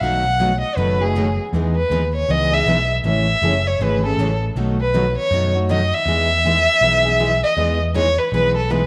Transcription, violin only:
0, 0, Header, 1, 2, 480
1, 0, Start_track
1, 0, Key_signature, 4, "major"
1, 0, Tempo, 377358
1, 17, Time_signature, 4, 2, 24, 8
1, 11278, End_track
2, 0, Start_track
2, 0, Title_t, "Violin"
2, 0, Program_c, 0, 40
2, 10, Note_on_c, 0, 78, 89
2, 762, Note_off_c, 0, 78, 0
2, 769, Note_on_c, 0, 75, 74
2, 970, Note_on_c, 0, 71, 81
2, 989, Note_off_c, 0, 75, 0
2, 1290, Note_on_c, 0, 68, 73
2, 1309, Note_off_c, 0, 71, 0
2, 1760, Note_off_c, 0, 68, 0
2, 2239, Note_on_c, 0, 71, 80
2, 2682, Note_off_c, 0, 71, 0
2, 2742, Note_on_c, 0, 73, 87
2, 2933, Note_on_c, 0, 75, 99
2, 2952, Note_off_c, 0, 73, 0
2, 3228, Note_on_c, 0, 76, 95
2, 3247, Note_off_c, 0, 75, 0
2, 3691, Note_off_c, 0, 76, 0
2, 3893, Note_on_c, 0, 76, 87
2, 4666, Note_on_c, 0, 73, 85
2, 4685, Note_off_c, 0, 76, 0
2, 4874, Note_on_c, 0, 71, 81
2, 4893, Note_off_c, 0, 73, 0
2, 5141, Note_off_c, 0, 71, 0
2, 5159, Note_on_c, 0, 69, 73
2, 5586, Note_off_c, 0, 69, 0
2, 6115, Note_on_c, 0, 71, 80
2, 6544, Note_off_c, 0, 71, 0
2, 6592, Note_on_c, 0, 73, 92
2, 7022, Note_off_c, 0, 73, 0
2, 7267, Note_on_c, 0, 75, 91
2, 7558, Note_on_c, 0, 76, 113
2, 7577, Note_off_c, 0, 75, 0
2, 9445, Note_off_c, 0, 76, 0
2, 9453, Note_on_c, 0, 75, 86
2, 9890, Note_off_c, 0, 75, 0
2, 10118, Note_on_c, 0, 73, 95
2, 10409, Note_on_c, 0, 71, 83
2, 10428, Note_off_c, 0, 73, 0
2, 10590, Note_off_c, 0, 71, 0
2, 10600, Note_on_c, 0, 71, 94
2, 10862, Note_off_c, 0, 71, 0
2, 10896, Note_on_c, 0, 69, 84
2, 11080, Note_on_c, 0, 71, 84
2, 11099, Note_off_c, 0, 69, 0
2, 11278, Note_off_c, 0, 71, 0
2, 11278, End_track
0, 0, End_of_file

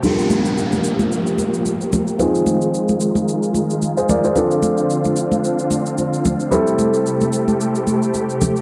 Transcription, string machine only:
0, 0, Header, 1, 2, 480
1, 0, Start_track
1, 0, Tempo, 540541
1, 30, Time_signature, 4, 2, 24, 8
1, 7652, End_track
2, 0, Start_track
2, 0, Title_t, "String machine"
2, 0, Program_c, 0, 50
2, 29, Note_on_c, 0, 67, 83
2, 30, Note_on_c, 0, 53, 75
2, 31, Note_on_c, 0, 58, 69
2, 1930, Note_off_c, 0, 67, 0
2, 1931, Note_off_c, 0, 53, 0
2, 1931, Note_off_c, 0, 58, 0
2, 1951, Note_on_c, 0, 56, 69
2, 1952, Note_on_c, 0, 65, 82
2, 1953, Note_on_c, 0, 51, 73
2, 3851, Note_off_c, 0, 56, 0
2, 3852, Note_off_c, 0, 51, 0
2, 3868, Note_on_c, 0, 50, 76
2, 3869, Note_on_c, 0, 60, 68
2, 5755, Note_off_c, 0, 65, 0
2, 5770, Note_off_c, 0, 50, 0
2, 5770, Note_off_c, 0, 60, 0
2, 5789, Note_on_c, 0, 57, 69
2, 5790, Note_on_c, 0, 48, 75
2, 5790, Note_on_c, 0, 67, 85
2, 7652, Note_off_c, 0, 48, 0
2, 7652, Note_off_c, 0, 57, 0
2, 7652, Note_off_c, 0, 67, 0
2, 7652, End_track
0, 0, End_of_file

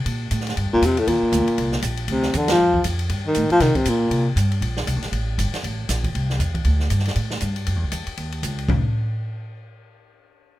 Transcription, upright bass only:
0, 0, Header, 1, 3, 480
1, 0, Start_track
1, 0, Tempo, 253593
1, 1073, Time_signature, 4, 2, 24, 8
1, 20052, End_track
2, 0, Start_track
2, 0, Title_t, "Upright bass"
2, 0, Program_c, 0, 32
2, 107, Note_on_c, 0, 46, 82
2, 575, Note_off_c, 0, 46, 0
2, 592, Note_on_c, 0, 45, 93
2, 1058, Note_off_c, 0, 45, 0
2, 1081, Note_on_c, 0, 43, 85
2, 1235, Note_on_c, 0, 41, 59
2, 1263, Note_off_c, 0, 43, 0
2, 1389, Note_off_c, 0, 41, 0
2, 1400, Note_on_c, 0, 38, 66
2, 1532, Note_off_c, 0, 38, 0
2, 1544, Note_on_c, 0, 40, 87
2, 2014, Note_off_c, 0, 40, 0
2, 2023, Note_on_c, 0, 39, 79
2, 2290, Note_off_c, 0, 39, 0
2, 2500, Note_on_c, 0, 38, 97
2, 2768, Note_off_c, 0, 38, 0
2, 2991, Note_on_c, 0, 36, 87
2, 3443, Note_off_c, 0, 36, 0
2, 3454, Note_on_c, 0, 34, 93
2, 3925, Note_off_c, 0, 34, 0
2, 3936, Note_on_c, 0, 38, 78
2, 4409, Note_off_c, 0, 38, 0
2, 4426, Note_on_c, 0, 40, 98
2, 4881, Note_off_c, 0, 40, 0
2, 4892, Note_on_c, 0, 41, 88
2, 5367, Note_off_c, 0, 41, 0
2, 5385, Note_on_c, 0, 41, 87
2, 5850, Note_off_c, 0, 41, 0
2, 5861, Note_on_c, 0, 43, 80
2, 6332, Note_off_c, 0, 43, 0
2, 6355, Note_on_c, 0, 45, 93
2, 6616, Note_off_c, 0, 45, 0
2, 6815, Note_on_c, 0, 48, 93
2, 7084, Note_off_c, 0, 48, 0
2, 7302, Note_on_c, 0, 46, 84
2, 7759, Note_off_c, 0, 46, 0
2, 7770, Note_on_c, 0, 48, 84
2, 8246, Note_off_c, 0, 48, 0
2, 8255, Note_on_c, 0, 43, 96
2, 8717, Note_off_c, 0, 43, 0
2, 8728, Note_on_c, 0, 34, 86
2, 9204, Note_off_c, 0, 34, 0
2, 9213, Note_on_c, 0, 36, 89
2, 9384, Note_off_c, 0, 36, 0
2, 9384, Note_on_c, 0, 34, 53
2, 9517, Note_off_c, 0, 34, 0
2, 9528, Note_on_c, 0, 33, 64
2, 9677, Note_off_c, 0, 33, 0
2, 9689, Note_on_c, 0, 33, 79
2, 10165, Note_off_c, 0, 33, 0
2, 10183, Note_on_c, 0, 31, 93
2, 10449, Note_off_c, 0, 31, 0
2, 10664, Note_on_c, 0, 33, 82
2, 11133, Note_off_c, 0, 33, 0
2, 11148, Note_on_c, 0, 34, 84
2, 11615, Note_off_c, 0, 34, 0
2, 11636, Note_on_c, 0, 36, 80
2, 12088, Note_off_c, 0, 36, 0
2, 12100, Note_on_c, 0, 40, 88
2, 12571, Note_off_c, 0, 40, 0
2, 12585, Note_on_c, 0, 38, 87
2, 13053, Note_off_c, 0, 38, 0
2, 13070, Note_on_c, 0, 43, 89
2, 13536, Note_off_c, 0, 43, 0
2, 13549, Note_on_c, 0, 45, 82
2, 14015, Note_off_c, 0, 45, 0
2, 14042, Note_on_c, 0, 43, 91
2, 14502, Note_off_c, 0, 43, 0
2, 14523, Note_on_c, 0, 42, 82
2, 14686, Note_off_c, 0, 42, 0
2, 14686, Note_on_c, 0, 40, 56
2, 14819, Note_off_c, 0, 40, 0
2, 14831, Note_on_c, 0, 37, 58
2, 14980, Note_off_c, 0, 37, 0
2, 14990, Note_on_c, 0, 40, 88
2, 15253, Note_off_c, 0, 40, 0
2, 15475, Note_on_c, 0, 39, 79
2, 15939, Note_off_c, 0, 39, 0
2, 15950, Note_on_c, 0, 37, 86
2, 16416, Note_off_c, 0, 37, 0
2, 16440, Note_on_c, 0, 29, 87
2, 16698, Note_off_c, 0, 29, 0
2, 20052, End_track
3, 0, Start_track
3, 0, Title_t, "Muted upright bass strokes"
3, 2312, Note_on_c, 9, 29, 39
3, 2501, Note_off_c, 9, 29, 0
3, 2784, Note_on_c, 9, 29, 39
3, 2973, Note_off_c, 9, 29, 0
3, 6627, Note_on_c, 9, 29, 38
3, 6817, Note_off_c, 9, 29, 0
3, 7100, Note_on_c, 9, 29, 38
3, 7289, Note_off_c, 9, 29, 0
3, 10464, Note_on_c, 9, 29, 37
3, 10653, Note_off_c, 9, 29, 0
3, 15271, Note_on_c, 9, 29, 40
3, 15461, Note_off_c, 9, 29, 0
3, 20052, End_track
0, 0, End_of_file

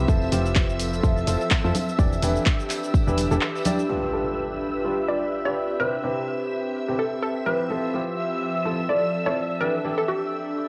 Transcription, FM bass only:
0, 0, Header, 1, 2, 480
1, 0, Start_track
1, 0, Tempo, 476190
1, 84, Time_signature, 4, 2, 24, 8
1, 10766, End_track
2, 0, Start_track
2, 0, Title_t, "FM bass"
2, 0, Program_c, 0, 39
2, 84, Note_on_c, 0, 29, 91
2, 303, Note_off_c, 0, 29, 0
2, 323, Note_on_c, 0, 29, 96
2, 1022, Note_off_c, 0, 29, 0
2, 1044, Note_on_c, 0, 29, 97
2, 1262, Note_off_c, 0, 29, 0
2, 1284, Note_on_c, 0, 29, 92
2, 1381, Note_off_c, 0, 29, 0
2, 1658, Note_on_c, 0, 41, 100
2, 1735, Note_off_c, 0, 41, 0
2, 2003, Note_on_c, 0, 28, 93
2, 2222, Note_off_c, 0, 28, 0
2, 2244, Note_on_c, 0, 28, 92
2, 2408, Note_off_c, 0, 28, 0
2, 3097, Note_on_c, 0, 28, 96
2, 3311, Note_off_c, 0, 28, 0
2, 3337, Note_on_c, 0, 28, 92
2, 3415, Note_off_c, 0, 28, 0
2, 10766, End_track
0, 0, End_of_file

